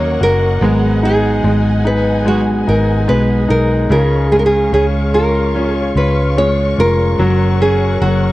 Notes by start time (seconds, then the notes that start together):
Already playing: D#2 D#3 F#3 A#3 C#4 D#4 F#4 A#4 C#5 D#5 F#5 C#6
0.21 F#1 F#4 A#4
0.60 G#1 G#2 D#3 F#3 G#3 B3 D#4 G#4 G#5
1.03 D#4 G#4
1.44 G#1 G#3
1.85 D#4 B4
2.25 F#3 G#3 B3 D#4 F#4 G#4
2.67 G#1 D#4 A#4
3.07 B1 F#3 G#3 B3 D#4 G#4 B4
3.49 B1 D#4 A#4
3.89 C#2 C#3 G#3 C#4 F4 G#4 A#4 C#5 F5 C#6
4.32 G#3 G#4
4.39 A#4
4.46 G#4
4.72 C#2 C#4 G#4
5.14 F4 A#4
5.54 G#3 C#4 F4 G#4
5.75 G#4
5.95 C#2 F4 B4
6.37 G#3 C#4 F4 G#4 C#5
6.78 F1 F4 A#4
7.18 F#1 F#3 C#4 F#4 A#4 F#5
7.61 C#4 G#4
8.01 F#1 F#3 F#4